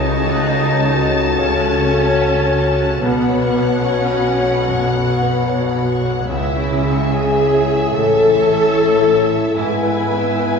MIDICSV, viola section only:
0, 0, Header, 1, 2, 480
1, 0, Start_track
1, 0, Tempo, 826446
1, 1750, Time_signature, 4, 2, 24, 8
1, 2710, Tempo, 817439
1, 6191, End_track
2, 0, Start_track
2, 0, Title_t, "Viola section"
2, 0, Program_c, 0, 48
2, 0, Note_on_c, 0, 63, 98
2, 794, Note_off_c, 0, 63, 0
2, 797, Note_on_c, 0, 61, 114
2, 1732, Note_off_c, 0, 61, 0
2, 1750, Note_on_c, 0, 59, 93
2, 2218, Note_off_c, 0, 59, 0
2, 2228, Note_on_c, 0, 61, 96
2, 2950, Note_off_c, 0, 61, 0
2, 3659, Note_on_c, 0, 64, 91
2, 4115, Note_off_c, 0, 64, 0
2, 4143, Note_on_c, 0, 68, 102
2, 4617, Note_off_c, 0, 68, 0
2, 4629, Note_on_c, 0, 69, 113
2, 5585, Note_on_c, 0, 64, 86
2, 5590, Note_off_c, 0, 69, 0
2, 6191, Note_off_c, 0, 64, 0
2, 6191, End_track
0, 0, End_of_file